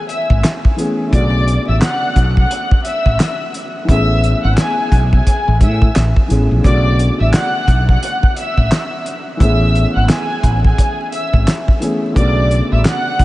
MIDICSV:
0, 0, Header, 1, 5, 480
1, 0, Start_track
1, 0, Tempo, 689655
1, 784, Time_signature, 4, 2, 24, 8
1, 9220, End_track
2, 0, Start_track
2, 0, Title_t, "Violin section"
2, 0, Program_c, 0, 48
2, 58, Note_on_c, 0, 76, 86
2, 64, Note_on_c, 0, 88, 57
2, 277, Note_off_c, 0, 76, 0
2, 280, Note_off_c, 0, 88, 0
2, 784, Note_on_c, 0, 74, 101
2, 789, Note_on_c, 0, 86, 81
2, 1146, Note_off_c, 0, 74, 0
2, 1149, Note_off_c, 0, 86, 0
2, 1169, Note_on_c, 0, 76, 76
2, 1175, Note_on_c, 0, 88, 55
2, 1255, Note_off_c, 0, 76, 0
2, 1258, Note_off_c, 0, 88, 0
2, 1267, Note_on_c, 0, 78, 88
2, 1273, Note_on_c, 0, 90, 69
2, 1628, Note_off_c, 0, 78, 0
2, 1631, Note_off_c, 0, 90, 0
2, 1650, Note_on_c, 0, 78, 80
2, 1655, Note_on_c, 0, 90, 58
2, 1964, Note_off_c, 0, 78, 0
2, 1967, Note_off_c, 0, 90, 0
2, 1983, Note_on_c, 0, 76, 90
2, 1988, Note_on_c, 0, 88, 72
2, 2346, Note_off_c, 0, 76, 0
2, 2349, Note_off_c, 0, 88, 0
2, 2715, Note_on_c, 0, 76, 107
2, 2721, Note_on_c, 0, 88, 85
2, 3072, Note_off_c, 0, 76, 0
2, 3075, Note_off_c, 0, 88, 0
2, 3081, Note_on_c, 0, 78, 83
2, 3086, Note_on_c, 0, 90, 64
2, 3170, Note_off_c, 0, 78, 0
2, 3173, Note_off_c, 0, 90, 0
2, 3177, Note_on_c, 0, 80, 84
2, 3183, Note_on_c, 0, 68, 63
2, 3543, Note_off_c, 0, 80, 0
2, 3545, Note_off_c, 0, 68, 0
2, 3570, Note_on_c, 0, 80, 77
2, 3576, Note_on_c, 0, 68, 59
2, 3885, Note_off_c, 0, 80, 0
2, 3888, Note_off_c, 0, 68, 0
2, 3905, Note_on_c, 0, 76, 73
2, 3911, Note_on_c, 0, 88, 58
2, 4121, Note_off_c, 0, 76, 0
2, 4124, Note_off_c, 0, 88, 0
2, 4628, Note_on_c, 0, 74, 104
2, 4633, Note_on_c, 0, 86, 82
2, 4988, Note_off_c, 0, 74, 0
2, 4991, Note_off_c, 0, 86, 0
2, 5011, Note_on_c, 0, 76, 73
2, 5016, Note_on_c, 0, 88, 61
2, 5096, Note_off_c, 0, 76, 0
2, 5099, Note_off_c, 0, 88, 0
2, 5110, Note_on_c, 0, 78, 90
2, 5116, Note_on_c, 0, 90, 73
2, 5469, Note_off_c, 0, 78, 0
2, 5472, Note_off_c, 0, 90, 0
2, 5487, Note_on_c, 0, 78, 82
2, 5493, Note_on_c, 0, 90, 66
2, 5803, Note_off_c, 0, 78, 0
2, 5806, Note_off_c, 0, 90, 0
2, 5837, Note_on_c, 0, 76, 79
2, 5843, Note_on_c, 0, 88, 66
2, 6193, Note_off_c, 0, 76, 0
2, 6196, Note_off_c, 0, 88, 0
2, 6545, Note_on_c, 0, 76, 106
2, 6550, Note_on_c, 0, 88, 82
2, 6907, Note_off_c, 0, 76, 0
2, 6909, Note_off_c, 0, 88, 0
2, 6922, Note_on_c, 0, 78, 83
2, 6927, Note_on_c, 0, 90, 67
2, 7011, Note_off_c, 0, 78, 0
2, 7014, Note_off_c, 0, 90, 0
2, 7024, Note_on_c, 0, 80, 84
2, 7029, Note_on_c, 0, 68, 62
2, 7386, Note_off_c, 0, 80, 0
2, 7389, Note_off_c, 0, 68, 0
2, 7409, Note_on_c, 0, 80, 76
2, 7414, Note_on_c, 0, 68, 62
2, 7724, Note_off_c, 0, 80, 0
2, 7727, Note_off_c, 0, 68, 0
2, 7738, Note_on_c, 0, 76, 83
2, 7744, Note_on_c, 0, 88, 57
2, 7957, Note_off_c, 0, 76, 0
2, 7960, Note_off_c, 0, 88, 0
2, 8464, Note_on_c, 0, 74, 104
2, 8470, Note_on_c, 0, 86, 80
2, 8826, Note_off_c, 0, 74, 0
2, 8829, Note_off_c, 0, 86, 0
2, 8849, Note_on_c, 0, 76, 76
2, 8855, Note_on_c, 0, 88, 55
2, 8935, Note_off_c, 0, 76, 0
2, 8938, Note_off_c, 0, 88, 0
2, 8947, Note_on_c, 0, 78, 91
2, 8952, Note_on_c, 0, 90, 70
2, 9220, Note_off_c, 0, 78, 0
2, 9220, Note_off_c, 0, 90, 0
2, 9220, End_track
3, 0, Start_track
3, 0, Title_t, "Grand piano"
3, 0, Program_c, 1, 0
3, 0, Control_c, 1, 64, 127
3, 0, Note_on_c, 1, 52, 62
3, 0, Note_on_c, 1, 57, 58
3, 0, Note_on_c, 1, 59, 66
3, 0, Note_on_c, 1, 61, 60
3, 0, Note_on_c, 1, 68, 68
3, 504, Note_off_c, 1, 52, 0
3, 509, Note_off_c, 1, 57, 0
3, 515, Note_off_c, 1, 59, 0
3, 520, Note_off_c, 1, 61, 0
3, 525, Note_off_c, 1, 68, 0
3, 532, Note_on_c, 1, 52, 54
3, 537, Note_on_c, 1, 57, 50
3, 542, Note_on_c, 1, 59, 52
3, 547, Note_on_c, 1, 61, 53
3, 553, Note_on_c, 1, 68, 66
3, 759, Note_off_c, 1, 57, 0
3, 759, Note_on_c, 1, 50, 64
3, 769, Note_off_c, 1, 59, 0
3, 769, Note_on_c, 1, 57, 62
3, 778, Note_off_c, 1, 52, 0
3, 779, Note_on_c, 1, 59, 58
3, 786, Note_off_c, 1, 61, 0
3, 789, Note_off_c, 1, 68, 0
3, 790, Note_on_c, 1, 49, 62
3, 794, Control_c, 1, 64, 0
3, 800, Note_on_c, 1, 66, 73
3, 936, Control_c, 1, 64, 127
3, 2664, Note_off_c, 1, 50, 0
3, 2669, Note_off_c, 1, 57, 0
3, 2674, Note_off_c, 1, 59, 0
3, 2679, Note_on_c, 1, 52, 65
3, 2680, Note_off_c, 1, 49, 0
3, 2685, Note_off_c, 1, 66, 0
3, 2690, Note_on_c, 1, 57, 57
3, 2700, Note_on_c, 1, 59, 68
3, 2711, Note_on_c, 1, 61, 60
3, 2712, Control_c, 1, 64, 0
3, 2721, Note_on_c, 1, 68, 72
3, 2851, Control_c, 1, 64, 127
3, 4344, Note_off_c, 1, 52, 0
3, 4349, Note_off_c, 1, 57, 0
3, 4354, Note_off_c, 1, 59, 0
3, 4360, Note_off_c, 1, 61, 0
3, 4365, Note_off_c, 1, 68, 0
3, 4371, Note_on_c, 1, 52, 55
3, 4376, Note_on_c, 1, 57, 53
3, 4382, Note_on_c, 1, 59, 51
3, 4387, Note_on_c, 1, 61, 53
3, 4392, Note_on_c, 1, 68, 64
3, 4599, Note_off_c, 1, 57, 0
3, 4599, Note_on_c, 1, 50, 60
3, 4609, Note_off_c, 1, 59, 0
3, 4609, Note_on_c, 1, 57, 61
3, 4618, Note_off_c, 1, 52, 0
3, 4619, Note_on_c, 1, 59, 58
3, 4626, Note_off_c, 1, 61, 0
3, 4628, Note_off_c, 1, 68, 0
3, 4630, Note_on_c, 1, 49, 60
3, 4635, Control_c, 1, 64, 0
3, 4641, Note_on_c, 1, 66, 73
3, 4744, Control_c, 1, 64, 127
3, 6504, Note_off_c, 1, 50, 0
3, 6509, Note_off_c, 1, 57, 0
3, 6514, Note_off_c, 1, 59, 0
3, 6519, Note_on_c, 1, 52, 63
3, 6520, Note_off_c, 1, 49, 0
3, 6525, Note_off_c, 1, 66, 0
3, 6530, Note_on_c, 1, 57, 57
3, 6540, Note_on_c, 1, 59, 68
3, 6551, Note_on_c, 1, 61, 62
3, 6552, Control_c, 1, 64, 0
3, 6561, Note_on_c, 1, 68, 72
3, 6687, Control_c, 1, 64, 127
3, 8184, Note_off_c, 1, 52, 0
3, 8189, Note_off_c, 1, 57, 0
3, 8194, Note_off_c, 1, 59, 0
3, 8200, Note_off_c, 1, 61, 0
3, 8205, Note_off_c, 1, 68, 0
3, 8211, Note_on_c, 1, 52, 55
3, 8216, Note_on_c, 1, 57, 51
3, 8221, Note_on_c, 1, 59, 52
3, 8227, Note_on_c, 1, 61, 52
3, 8232, Note_on_c, 1, 68, 64
3, 8438, Note_off_c, 1, 57, 0
3, 8438, Note_on_c, 1, 50, 60
3, 8448, Note_off_c, 1, 59, 0
3, 8448, Note_on_c, 1, 57, 63
3, 8458, Note_off_c, 1, 52, 0
3, 8459, Note_on_c, 1, 59, 60
3, 8466, Note_off_c, 1, 61, 0
3, 8468, Note_off_c, 1, 68, 0
3, 8469, Note_on_c, 1, 49, 61
3, 8475, Control_c, 1, 64, 0
3, 8480, Note_on_c, 1, 66, 73
3, 8593, Control_c, 1, 64, 127
3, 9220, Note_off_c, 1, 49, 0
3, 9220, Note_off_c, 1, 50, 0
3, 9220, Note_off_c, 1, 57, 0
3, 9220, Note_off_c, 1, 59, 0
3, 9220, Note_off_c, 1, 66, 0
3, 9220, End_track
4, 0, Start_track
4, 0, Title_t, "Fretless electric bass"
4, 0, Program_c, 2, 35
4, 210, Note_on_c, 2, 32, 92
4, 285, Note_off_c, 2, 32, 0
4, 786, Note_on_c, 2, 35, 116
4, 1089, Note_off_c, 2, 35, 0
4, 1172, Note_on_c, 2, 33, 89
4, 1246, Note_off_c, 2, 33, 0
4, 1504, Note_on_c, 2, 35, 96
4, 1693, Note_off_c, 2, 35, 0
4, 2130, Note_on_c, 2, 33, 90
4, 2204, Note_off_c, 2, 33, 0
4, 2705, Note_on_c, 2, 33, 110
4, 3009, Note_off_c, 2, 33, 0
4, 3092, Note_on_c, 2, 32, 90
4, 3166, Note_off_c, 2, 32, 0
4, 3424, Note_on_c, 2, 35, 90
4, 3613, Note_off_c, 2, 35, 0
4, 3812, Note_on_c, 2, 33, 91
4, 3903, Note_on_c, 2, 45, 91
4, 3914, Note_off_c, 2, 33, 0
4, 4093, Note_off_c, 2, 45, 0
4, 4147, Note_on_c, 2, 33, 88
4, 4260, Note_off_c, 2, 33, 0
4, 4387, Note_on_c, 2, 33, 83
4, 4501, Note_off_c, 2, 33, 0
4, 4532, Note_on_c, 2, 34, 89
4, 4606, Note_off_c, 2, 34, 0
4, 4625, Note_on_c, 2, 35, 109
4, 4929, Note_off_c, 2, 35, 0
4, 5012, Note_on_c, 2, 33, 91
4, 5086, Note_off_c, 2, 33, 0
4, 5345, Note_on_c, 2, 35, 90
4, 5534, Note_off_c, 2, 35, 0
4, 5970, Note_on_c, 2, 33, 88
4, 6045, Note_off_c, 2, 33, 0
4, 6546, Note_on_c, 2, 33, 104
4, 6849, Note_off_c, 2, 33, 0
4, 6932, Note_on_c, 2, 32, 85
4, 7006, Note_off_c, 2, 32, 0
4, 7264, Note_on_c, 2, 33, 100
4, 7453, Note_off_c, 2, 33, 0
4, 7890, Note_on_c, 2, 32, 91
4, 7965, Note_off_c, 2, 32, 0
4, 8466, Note_on_c, 2, 35, 111
4, 8769, Note_off_c, 2, 35, 0
4, 8852, Note_on_c, 2, 33, 89
4, 8926, Note_off_c, 2, 33, 0
4, 9184, Note_on_c, 2, 35, 93
4, 9220, Note_off_c, 2, 35, 0
4, 9220, End_track
5, 0, Start_track
5, 0, Title_t, "Drums"
5, 63, Note_on_c, 9, 42, 75
5, 132, Note_off_c, 9, 42, 0
5, 209, Note_on_c, 9, 36, 92
5, 278, Note_off_c, 9, 36, 0
5, 305, Note_on_c, 9, 42, 104
5, 307, Note_on_c, 9, 39, 88
5, 309, Note_on_c, 9, 38, 107
5, 375, Note_off_c, 9, 42, 0
5, 377, Note_off_c, 9, 39, 0
5, 378, Note_off_c, 9, 38, 0
5, 451, Note_on_c, 9, 36, 90
5, 520, Note_off_c, 9, 36, 0
5, 546, Note_on_c, 9, 42, 68
5, 616, Note_off_c, 9, 42, 0
5, 784, Note_on_c, 9, 36, 112
5, 788, Note_on_c, 9, 42, 73
5, 854, Note_off_c, 9, 36, 0
5, 858, Note_off_c, 9, 42, 0
5, 1028, Note_on_c, 9, 42, 69
5, 1097, Note_off_c, 9, 42, 0
5, 1264, Note_on_c, 9, 39, 98
5, 1266, Note_on_c, 9, 38, 120
5, 1267, Note_on_c, 9, 42, 93
5, 1334, Note_off_c, 9, 39, 0
5, 1335, Note_off_c, 9, 38, 0
5, 1336, Note_off_c, 9, 42, 0
5, 1503, Note_on_c, 9, 36, 88
5, 1504, Note_on_c, 9, 42, 73
5, 1572, Note_off_c, 9, 36, 0
5, 1574, Note_off_c, 9, 42, 0
5, 1649, Note_on_c, 9, 36, 95
5, 1719, Note_off_c, 9, 36, 0
5, 1746, Note_on_c, 9, 42, 105
5, 1815, Note_off_c, 9, 42, 0
5, 1889, Note_on_c, 9, 36, 105
5, 1959, Note_off_c, 9, 36, 0
5, 1982, Note_on_c, 9, 42, 75
5, 2051, Note_off_c, 9, 42, 0
5, 2129, Note_on_c, 9, 36, 89
5, 2198, Note_off_c, 9, 36, 0
5, 2225, Note_on_c, 9, 42, 104
5, 2227, Note_on_c, 9, 39, 87
5, 2229, Note_on_c, 9, 38, 104
5, 2295, Note_off_c, 9, 42, 0
5, 2297, Note_off_c, 9, 39, 0
5, 2298, Note_off_c, 9, 38, 0
5, 2465, Note_on_c, 9, 42, 67
5, 2535, Note_off_c, 9, 42, 0
5, 2704, Note_on_c, 9, 36, 109
5, 2708, Note_on_c, 9, 42, 72
5, 2774, Note_off_c, 9, 36, 0
5, 2777, Note_off_c, 9, 42, 0
5, 2947, Note_on_c, 9, 42, 68
5, 3017, Note_off_c, 9, 42, 0
5, 3184, Note_on_c, 9, 39, 99
5, 3186, Note_on_c, 9, 38, 123
5, 3187, Note_on_c, 9, 42, 93
5, 3254, Note_off_c, 9, 39, 0
5, 3255, Note_off_c, 9, 38, 0
5, 3256, Note_off_c, 9, 42, 0
5, 3423, Note_on_c, 9, 36, 89
5, 3425, Note_on_c, 9, 42, 70
5, 3492, Note_off_c, 9, 36, 0
5, 3494, Note_off_c, 9, 42, 0
5, 3569, Note_on_c, 9, 36, 95
5, 3639, Note_off_c, 9, 36, 0
5, 3666, Note_on_c, 9, 36, 88
5, 3666, Note_on_c, 9, 42, 102
5, 3736, Note_off_c, 9, 36, 0
5, 3736, Note_off_c, 9, 42, 0
5, 3902, Note_on_c, 9, 36, 79
5, 3902, Note_on_c, 9, 42, 74
5, 3972, Note_off_c, 9, 36, 0
5, 3972, Note_off_c, 9, 42, 0
5, 4049, Note_on_c, 9, 36, 90
5, 4118, Note_off_c, 9, 36, 0
5, 4145, Note_on_c, 9, 42, 106
5, 4147, Note_on_c, 9, 39, 83
5, 4148, Note_on_c, 9, 38, 110
5, 4214, Note_off_c, 9, 42, 0
5, 4217, Note_off_c, 9, 39, 0
5, 4218, Note_off_c, 9, 38, 0
5, 4291, Note_on_c, 9, 36, 88
5, 4360, Note_off_c, 9, 36, 0
5, 4385, Note_on_c, 9, 42, 65
5, 4455, Note_off_c, 9, 42, 0
5, 4624, Note_on_c, 9, 36, 107
5, 4628, Note_on_c, 9, 42, 72
5, 4694, Note_off_c, 9, 36, 0
5, 4698, Note_off_c, 9, 42, 0
5, 4867, Note_on_c, 9, 42, 69
5, 4937, Note_off_c, 9, 42, 0
5, 5105, Note_on_c, 9, 39, 98
5, 5106, Note_on_c, 9, 38, 123
5, 5107, Note_on_c, 9, 42, 90
5, 5174, Note_off_c, 9, 39, 0
5, 5176, Note_off_c, 9, 38, 0
5, 5177, Note_off_c, 9, 42, 0
5, 5343, Note_on_c, 9, 36, 89
5, 5345, Note_on_c, 9, 42, 74
5, 5413, Note_off_c, 9, 36, 0
5, 5414, Note_off_c, 9, 42, 0
5, 5490, Note_on_c, 9, 36, 94
5, 5559, Note_off_c, 9, 36, 0
5, 5586, Note_on_c, 9, 42, 97
5, 5656, Note_off_c, 9, 42, 0
5, 5729, Note_on_c, 9, 36, 100
5, 5799, Note_off_c, 9, 36, 0
5, 5822, Note_on_c, 9, 42, 74
5, 5892, Note_off_c, 9, 42, 0
5, 5969, Note_on_c, 9, 36, 89
5, 6038, Note_off_c, 9, 36, 0
5, 6066, Note_on_c, 9, 42, 105
5, 6068, Note_on_c, 9, 39, 86
5, 6069, Note_on_c, 9, 38, 106
5, 6135, Note_off_c, 9, 42, 0
5, 6137, Note_off_c, 9, 39, 0
5, 6138, Note_off_c, 9, 38, 0
5, 6306, Note_on_c, 9, 42, 69
5, 6376, Note_off_c, 9, 42, 0
5, 6544, Note_on_c, 9, 36, 107
5, 6548, Note_on_c, 9, 42, 77
5, 6614, Note_off_c, 9, 36, 0
5, 6617, Note_off_c, 9, 42, 0
5, 6787, Note_on_c, 9, 42, 70
5, 6857, Note_off_c, 9, 42, 0
5, 7025, Note_on_c, 9, 39, 100
5, 7026, Note_on_c, 9, 38, 123
5, 7027, Note_on_c, 9, 42, 90
5, 7094, Note_off_c, 9, 39, 0
5, 7096, Note_off_c, 9, 38, 0
5, 7097, Note_off_c, 9, 42, 0
5, 7263, Note_on_c, 9, 36, 90
5, 7264, Note_on_c, 9, 42, 76
5, 7332, Note_off_c, 9, 36, 0
5, 7334, Note_off_c, 9, 42, 0
5, 7409, Note_on_c, 9, 36, 95
5, 7479, Note_off_c, 9, 36, 0
5, 7506, Note_on_c, 9, 36, 92
5, 7506, Note_on_c, 9, 42, 101
5, 7575, Note_off_c, 9, 36, 0
5, 7576, Note_off_c, 9, 42, 0
5, 7742, Note_on_c, 9, 42, 75
5, 7812, Note_off_c, 9, 42, 0
5, 7889, Note_on_c, 9, 36, 92
5, 7958, Note_off_c, 9, 36, 0
5, 7985, Note_on_c, 9, 42, 104
5, 7987, Note_on_c, 9, 39, 89
5, 7989, Note_on_c, 9, 38, 106
5, 8055, Note_off_c, 9, 42, 0
5, 8057, Note_off_c, 9, 39, 0
5, 8058, Note_off_c, 9, 38, 0
5, 8130, Note_on_c, 9, 36, 92
5, 8200, Note_off_c, 9, 36, 0
5, 8226, Note_on_c, 9, 42, 70
5, 8295, Note_off_c, 9, 42, 0
5, 8464, Note_on_c, 9, 36, 112
5, 8468, Note_on_c, 9, 42, 75
5, 8534, Note_off_c, 9, 36, 0
5, 8538, Note_off_c, 9, 42, 0
5, 8707, Note_on_c, 9, 42, 69
5, 8777, Note_off_c, 9, 42, 0
5, 8944, Note_on_c, 9, 39, 101
5, 8946, Note_on_c, 9, 38, 126
5, 8947, Note_on_c, 9, 42, 90
5, 9014, Note_off_c, 9, 39, 0
5, 9015, Note_off_c, 9, 38, 0
5, 9017, Note_off_c, 9, 42, 0
5, 9183, Note_on_c, 9, 36, 96
5, 9184, Note_on_c, 9, 42, 72
5, 9220, Note_off_c, 9, 36, 0
5, 9220, Note_off_c, 9, 42, 0
5, 9220, End_track
0, 0, End_of_file